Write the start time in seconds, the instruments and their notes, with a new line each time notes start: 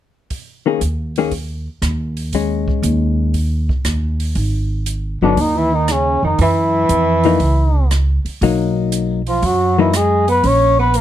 0.30 kick, open hi-hat
0.66 hollow-body jazz guitar D#3 A#3 C#4 G#4
0.81 upright bass D#2, closed hi-hat
1.16 hollow-body jazz guitar D#3 A#3 C#4 G#4, open hi-hat
1.31 kick, open hi-hat
1.82 upright bass D#2, cross-stick, closed hi-hat
2.17 open hi-hat
2.33 hollow-body jazz guitar G#3 C#4, kick, open hi-hat
2.68 kick
2.83 upright bass D#2, closed hi-hat
3.34 kick, open hi-hat
3.69 kick
3.85 upright bass D#2, cross-stick, closed hi-hat
4.20 open hi-hat
4.35 upright bass G#1, kick, open hi-hat
4.86 closed hi-hat
5.22 upright bass G1, tenor saxophone D3, hollow-body jazz guitar F#3 B3 D#4, muted trumpet D4
5.37 upright bass D#2, tenor saxophone D#3, kick, open hi-hat
5.41 muted trumpet D#4
5.56 tenor saxophone E3, muted trumpet E4
5.73 tenor saxophone D#3, muted trumpet D#4
5.88 tenor saxophone C#3, cross-stick, closed hi-hat
5.92 muted trumpet C#4
6.23 upright bass F2, tenor saxophone D#3, muted trumpet D#4
6.39 upright bass F#2, tenor saxophone E3, muted trumpet E4, kick, open hi-hat
6.89 upright bass F2, closed hi-hat
7.24 hollow-body jazz guitar E3 A#3 D#4, open hi-hat
7.40 upright bass C#2, kick, open hi-hat
7.91 cross-stick, closed hi-hat
8.25 muted upright bass stroke, open hi-hat
8.41 upright bass B1, hollow-body jazz guitar F#3 A#3 D#4, kick, open hi-hat
8.92 closed hi-hat
9.27 tenor saxophone F3, muted trumpet F4, open hi-hat
9.42 upright bass F#2, tenor saxophone F#3, muted trumpet F#4, kick, open hi-hat
9.78 tenor saxophone E3, hollow-body jazz guitar F#3 A#3 D#4, muted trumpet E4
9.93 tenor saxophone G#3, muted trumpet G#4, cross-stick, closed hi-hat
10.28 tenor saxophone B3, muted trumpet B4, open hi-hat
10.43 upright bass A#1, tenor saxophone C#4, muted trumpet C#5, kick, open hi-hat
10.79 tenor saxophone B3, muted trumpet B4
10.94 tenor saxophone A#3, muted trumpet A#4, closed hi-hat